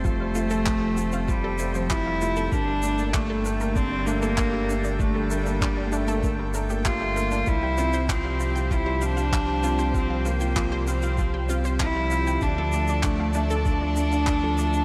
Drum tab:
SH |x-xxx-xxx-xxx-xx|x-xxx-xxx-xxx-xx|x-xxx-xxx-xxx-xx|x-xxx-xxx-xxx-xx|
CP |----x-------x---|----x-------x---|----x-------x---|----x-------x---|
BD |o---o---o---o---|o---o---o---o---|o---o---o---o---|o---o---o---o---|

SH |x-xxx-xxx-xxx-xx|x-xxx-xxx-xxx-xx|
CP |----x-------x---|----x-------x---|
BD |o---o---o---o---|o---o---o---o---|